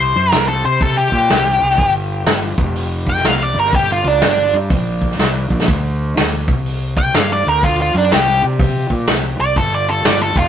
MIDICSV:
0, 0, Header, 1, 4, 480
1, 0, Start_track
1, 0, Tempo, 486224
1, 1765, Time_signature, 4, 2, 24, 8
1, 10349, End_track
2, 0, Start_track
2, 0, Title_t, "Lead electric guitar"
2, 0, Program_c, 0, 29
2, 0, Note_on_c, 0, 72, 83
2, 310, Note_off_c, 0, 72, 0
2, 310, Note_on_c, 0, 70, 83
2, 466, Note_off_c, 0, 70, 0
2, 476, Note_on_c, 0, 69, 80
2, 641, Note_off_c, 0, 69, 0
2, 641, Note_on_c, 0, 72, 73
2, 812, Note_off_c, 0, 72, 0
2, 812, Note_on_c, 0, 69, 109
2, 959, Note_on_c, 0, 67, 104
2, 963, Note_off_c, 0, 69, 0
2, 1894, Note_off_c, 0, 67, 0
2, 3057, Note_on_c, 0, 79, 99
2, 3207, Note_off_c, 0, 79, 0
2, 3219, Note_on_c, 0, 77, 80
2, 3384, Note_off_c, 0, 77, 0
2, 3384, Note_on_c, 0, 74, 88
2, 3531, Note_off_c, 0, 74, 0
2, 3549, Note_on_c, 0, 70, 97
2, 3694, Note_off_c, 0, 70, 0
2, 3699, Note_on_c, 0, 67, 86
2, 3848, Note_off_c, 0, 67, 0
2, 3873, Note_on_c, 0, 65, 87
2, 4024, Note_off_c, 0, 65, 0
2, 4024, Note_on_c, 0, 62, 87
2, 4172, Note_off_c, 0, 62, 0
2, 4186, Note_on_c, 0, 62, 97
2, 4475, Note_off_c, 0, 62, 0
2, 6895, Note_on_c, 0, 79, 104
2, 7047, Note_off_c, 0, 79, 0
2, 7069, Note_on_c, 0, 77, 85
2, 7214, Note_off_c, 0, 77, 0
2, 7234, Note_on_c, 0, 74, 75
2, 7377, Note_off_c, 0, 74, 0
2, 7395, Note_on_c, 0, 70, 94
2, 7537, Note_off_c, 0, 70, 0
2, 7541, Note_on_c, 0, 65, 81
2, 7690, Note_off_c, 0, 65, 0
2, 7717, Note_on_c, 0, 65, 76
2, 7858, Note_off_c, 0, 65, 0
2, 7874, Note_on_c, 0, 62, 89
2, 8014, Note_on_c, 0, 67, 97
2, 8016, Note_off_c, 0, 62, 0
2, 8308, Note_off_c, 0, 67, 0
2, 9289, Note_on_c, 0, 74, 108
2, 9442, Note_off_c, 0, 74, 0
2, 9451, Note_on_c, 0, 69, 88
2, 9603, Note_off_c, 0, 69, 0
2, 9621, Note_on_c, 0, 74, 85
2, 9765, Note_on_c, 0, 69, 87
2, 9768, Note_off_c, 0, 74, 0
2, 9919, Note_off_c, 0, 69, 0
2, 9935, Note_on_c, 0, 74, 108
2, 10084, Note_off_c, 0, 74, 0
2, 10086, Note_on_c, 0, 69, 102
2, 10236, Note_on_c, 0, 65, 75
2, 10240, Note_off_c, 0, 69, 0
2, 10349, Note_off_c, 0, 65, 0
2, 10349, End_track
3, 0, Start_track
3, 0, Title_t, "Fingered electric bass"
3, 0, Program_c, 1, 33
3, 0, Note_on_c, 1, 36, 88
3, 120, Note_off_c, 1, 36, 0
3, 153, Note_on_c, 1, 42, 91
3, 313, Note_off_c, 1, 42, 0
3, 331, Note_on_c, 1, 36, 86
3, 613, Note_off_c, 1, 36, 0
3, 635, Note_on_c, 1, 48, 85
3, 1080, Note_off_c, 1, 48, 0
3, 1105, Note_on_c, 1, 46, 86
3, 1269, Note_off_c, 1, 46, 0
3, 1285, Note_on_c, 1, 36, 79
3, 1570, Note_off_c, 1, 36, 0
3, 1592, Note_on_c, 1, 36, 76
3, 1749, Note_off_c, 1, 36, 0
3, 1755, Note_on_c, 1, 31, 96
3, 2207, Note_off_c, 1, 31, 0
3, 2232, Note_on_c, 1, 31, 90
3, 2524, Note_off_c, 1, 31, 0
3, 2542, Note_on_c, 1, 29, 76
3, 3162, Note_off_c, 1, 29, 0
3, 3198, Note_on_c, 1, 36, 84
3, 3488, Note_off_c, 1, 36, 0
3, 3494, Note_on_c, 1, 31, 99
3, 3950, Note_off_c, 1, 31, 0
3, 3989, Note_on_c, 1, 37, 100
3, 4153, Note_off_c, 1, 37, 0
3, 4170, Note_on_c, 1, 31, 88
3, 4455, Note_off_c, 1, 31, 0
3, 4475, Note_on_c, 1, 43, 79
3, 4636, Note_off_c, 1, 43, 0
3, 4642, Note_on_c, 1, 34, 96
3, 5092, Note_off_c, 1, 34, 0
3, 5123, Note_on_c, 1, 36, 89
3, 5411, Note_off_c, 1, 36, 0
3, 5432, Note_on_c, 1, 34, 101
3, 5595, Note_off_c, 1, 34, 0
3, 5610, Note_on_c, 1, 38, 94
3, 6056, Note_off_c, 1, 38, 0
3, 6102, Note_on_c, 1, 38, 80
3, 6381, Note_off_c, 1, 38, 0
3, 6397, Note_on_c, 1, 36, 81
3, 7010, Note_off_c, 1, 36, 0
3, 7055, Note_on_c, 1, 43, 82
3, 7337, Note_off_c, 1, 43, 0
3, 7368, Note_on_c, 1, 38, 92
3, 7808, Note_off_c, 1, 38, 0
3, 7840, Note_on_c, 1, 42, 97
3, 7998, Note_off_c, 1, 42, 0
3, 8010, Note_on_c, 1, 36, 86
3, 8294, Note_off_c, 1, 36, 0
3, 8315, Note_on_c, 1, 48, 81
3, 8760, Note_off_c, 1, 48, 0
3, 8785, Note_on_c, 1, 46, 81
3, 8949, Note_off_c, 1, 46, 0
3, 8966, Note_on_c, 1, 36, 77
3, 9250, Note_off_c, 1, 36, 0
3, 9270, Note_on_c, 1, 36, 73
3, 9432, Note_off_c, 1, 36, 0
3, 9440, Note_on_c, 1, 31, 94
3, 9888, Note_off_c, 1, 31, 0
3, 9916, Note_on_c, 1, 31, 86
3, 10204, Note_off_c, 1, 31, 0
3, 10223, Note_on_c, 1, 29, 83
3, 10349, Note_off_c, 1, 29, 0
3, 10349, End_track
4, 0, Start_track
4, 0, Title_t, "Drums"
4, 315, Note_on_c, 9, 46, 56
4, 320, Note_on_c, 9, 38, 122
4, 413, Note_off_c, 9, 46, 0
4, 418, Note_off_c, 9, 38, 0
4, 796, Note_on_c, 9, 46, 57
4, 798, Note_on_c, 9, 36, 127
4, 895, Note_off_c, 9, 46, 0
4, 896, Note_off_c, 9, 36, 0
4, 1106, Note_on_c, 9, 36, 69
4, 1205, Note_off_c, 9, 36, 0
4, 1282, Note_on_c, 9, 46, 53
4, 1287, Note_on_c, 9, 38, 110
4, 1381, Note_off_c, 9, 46, 0
4, 1386, Note_off_c, 9, 38, 0
4, 1680, Note_on_c, 9, 38, 34
4, 1754, Note_on_c, 9, 46, 53
4, 1759, Note_on_c, 9, 36, 98
4, 1779, Note_off_c, 9, 38, 0
4, 1853, Note_off_c, 9, 46, 0
4, 1857, Note_off_c, 9, 36, 0
4, 2232, Note_on_c, 9, 46, 62
4, 2237, Note_on_c, 9, 38, 116
4, 2331, Note_off_c, 9, 46, 0
4, 2336, Note_off_c, 9, 38, 0
4, 2546, Note_on_c, 9, 36, 108
4, 2645, Note_off_c, 9, 36, 0
4, 2721, Note_on_c, 9, 46, 68
4, 2819, Note_off_c, 9, 46, 0
4, 3027, Note_on_c, 9, 36, 72
4, 3121, Note_on_c, 9, 38, 34
4, 3126, Note_off_c, 9, 36, 0
4, 3202, Note_on_c, 9, 46, 55
4, 3207, Note_off_c, 9, 38, 0
4, 3207, Note_on_c, 9, 38, 108
4, 3300, Note_off_c, 9, 46, 0
4, 3305, Note_off_c, 9, 38, 0
4, 3606, Note_on_c, 9, 38, 36
4, 3679, Note_on_c, 9, 46, 51
4, 3681, Note_on_c, 9, 36, 108
4, 3705, Note_off_c, 9, 38, 0
4, 3778, Note_off_c, 9, 46, 0
4, 3780, Note_off_c, 9, 36, 0
4, 4158, Note_on_c, 9, 46, 62
4, 4163, Note_on_c, 9, 38, 117
4, 4257, Note_off_c, 9, 46, 0
4, 4261, Note_off_c, 9, 38, 0
4, 4641, Note_on_c, 9, 46, 60
4, 4643, Note_on_c, 9, 36, 123
4, 4740, Note_off_c, 9, 46, 0
4, 4742, Note_off_c, 9, 36, 0
4, 4952, Note_on_c, 9, 36, 77
4, 5042, Note_on_c, 9, 38, 37
4, 5050, Note_off_c, 9, 36, 0
4, 5124, Note_on_c, 9, 46, 55
4, 5129, Note_off_c, 9, 38, 0
4, 5129, Note_on_c, 9, 38, 95
4, 5223, Note_off_c, 9, 46, 0
4, 5228, Note_off_c, 9, 38, 0
4, 5434, Note_on_c, 9, 36, 70
4, 5526, Note_on_c, 9, 38, 87
4, 5532, Note_off_c, 9, 36, 0
4, 5608, Note_on_c, 9, 36, 102
4, 5608, Note_on_c, 9, 46, 50
4, 5625, Note_off_c, 9, 38, 0
4, 5707, Note_off_c, 9, 36, 0
4, 5707, Note_off_c, 9, 46, 0
4, 6091, Note_on_c, 9, 46, 66
4, 6095, Note_on_c, 9, 38, 116
4, 6189, Note_off_c, 9, 46, 0
4, 6194, Note_off_c, 9, 38, 0
4, 6397, Note_on_c, 9, 36, 103
4, 6496, Note_off_c, 9, 36, 0
4, 6573, Note_on_c, 9, 46, 73
4, 6672, Note_off_c, 9, 46, 0
4, 6877, Note_on_c, 9, 36, 89
4, 6976, Note_off_c, 9, 36, 0
4, 7049, Note_on_c, 9, 46, 61
4, 7054, Note_on_c, 9, 38, 111
4, 7148, Note_off_c, 9, 46, 0
4, 7153, Note_off_c, 9, 38, 0
4, 7532, Note_on_c, 9, 36, 97
4, 7532, Note_on_c, 9, 46, 51
4, 7630, Note_off_c, 9, 36, 0
4, 7631, Note_off_c, 9, 46, 0
4, 8012, Note_on_c, 9, 46, 58
4, 8017, Note_on_c, 9, 38, 120
4, 8111, Note_off_c, 9, 46, 0
4, 8115, Note_off_c, 9, 38, 0
4, 8484, Note_on_c, 9, 36, 127
4, 8485, Note_on_c, 9, 46, 64
4, 8583, Note_off_c, 9, 36, 0
4, 8584, Note_off_c, 9, 46, 0
4, 8788, Note_on_c, 9, 36, 72
4, 8886, Note_off_c, 9, 36, 0
4, 8955, Note_on_c, 9, 46, 56
4, 8960, Note_on_c, 9, 38, 113
4, 9054, Note_off_c, 9, 46, 0
4, 9059, Note_off_c, 9, 38, 0
4, 9437, Note_on_c, 9, 46, 51
4, 9439, Note_on_c, 9, 36, 94
4, 9536, Note_off_c, 9, 46, 0
4, 9538, Note_off_c, 9, 36, 0
4, 9918, Note_on_c, 9, 46, 64
4, 9923, Note_on_c, 9, 38, 127
4, 10017, Note_off_c, 9, 46, 0
4, 10022, Note_off_c, 9, 38, 0
4, 10224, Note_on_c, 9, 36, 105
4, 10323, Note_off_c, 9, 36, 0
4, 10349, End_track
0, 0, End_of_file